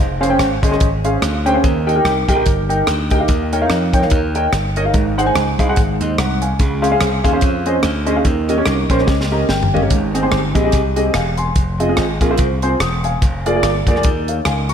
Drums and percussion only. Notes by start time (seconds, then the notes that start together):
0.23 cross-stick, closed hi-hat
0.39 cross-stick, closed hi-hat
0.63 kick, closed hi-hat
0.73 cross-stick
0.80 kick, closed hi-hat
1.05 closed hi-hat
1.22 cross-stick, closed hi-hat
1.46 closed hi-hat
1.64 kick, closed hi-hat
1.89 closed hi-hat
2.05 cross-stick, closed hi-hat
2.29 kick, closed hi-hat
2.46 kick, closed hi-hat
2.70 closed hi-hat
2.87 cross-stick, closed hi-hat
3.10 kick, closed hi-hat
3.28 kick, closed hi-hat
3.53 closed hi-hat
3.70 cross-stick, closed hi-hat
3.93 kick, closed hi-hat
4.03 cross-stick
4.10 kick, closed hi-hat
4.35 closed hi-hat
4.53 cross-stick, closed hi-hat
4.76 closed hi-hat
4.94 kick, closed hi-hat
5.18 cross-stick, closed hi-hat
5.35 cross-stick, closed hi-hat
5.59 kick, closed hi-hat
5.76 kick, closed hi-hat
6.01 closed hi-hat
6.18 cross-stick, closed hi-hat
6.42 closed hi-hat
6.59 kick, closed hi-hat
6.83 cross-stick, closed hi-hat
7.00 cross-stick, closed hi-hat
7.25 kick, closed hi-hat
7.41 kick, closed hi-hat
7.66 closed hi-hat
7.83 cross-stick, closed hi-hat
8.07 closed hi-hat
8.25 kick, closed hi-hat
8.49 cross-stick, closed hi-hat
8.65 cross-stick, closed hi-hat
8.90 kick, closed hi-hat
8.99 cross-stick
9.07 kick, snare
9.21 snare
9.49 snare
9.63 floor tom
9.77 floor tom
9.90 kick, closed hi-hat
10.15 cross-stick, closed hi-hat
10.31 cross-stick, closed hi-hat
10.55 kick, closed hi-hat
10.72 kick, closed hi-hat
10.96 closed hi-hat
11.14 cross-stick, closed hi-hat
11.37 closed hi-hat
11.56 kick, closed hi-hat
11.80 closed hi-hat
11.97 cross-stick, closed hi-hat
12.21 kick, closed hi-hat
12.38 kick, closed hi-hat
12.62 closed hi-hat
12.80 cross-stick, closed hi-hat
13.04 closed hi-hat
13.22 kick, closed hi-hat
13.46 closed hi-hat
13.63 cross-stick, closed hi-hat
13.87 kick, closed hi-hat
13.96 cross-stick
14.03 kick, closed hi-hat
14.28 closed hi-hat
14.45 cross-stick, closed hi-hat
14.69 closed hi-hat